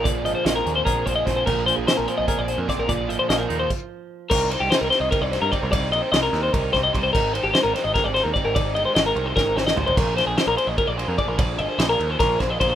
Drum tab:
CC |--------------|x-------------|--------x-----|x-------------|
RD |--------------|--------------|--------------|--x-x-x-x-x-x-|
HH |x-x-x-x-x-x-x-|--x-x-x-x-x-x-|x-x-x-x-------|--------------|
SD |----o-------o-|----o-------o-|----o---------|----o-o---o---|
FT |--------------|--------------|--------------|--------------|
BD |o-------o-o-o-|o-------o---o-|o-------o-----|o-------o---o-|

CC |--------------|x-------------|--------------|x-------------|
RD |x-x-x-x-x-x-x-|--x-x-x-x-x-x-|x-x-x-x-------|--x-x-x-x-x-x-|
HH |--------------|--------------|--------------|--------------|
SD |----o-o---o---|----o-o-o-o---|----o---o-oo--|--o-o---------|
FT |--------------|--------------|------------oo|--------------|
BD |o-------o-o-o-|o-------o---o-|o-------o-----|o-------o---o-|

CC |--------------|
RD |x-x-x-x-x-x-x-|
HH |--------------|
SD |----o---o-o---|
FT |--------------|
BD |o-------o-o-o-|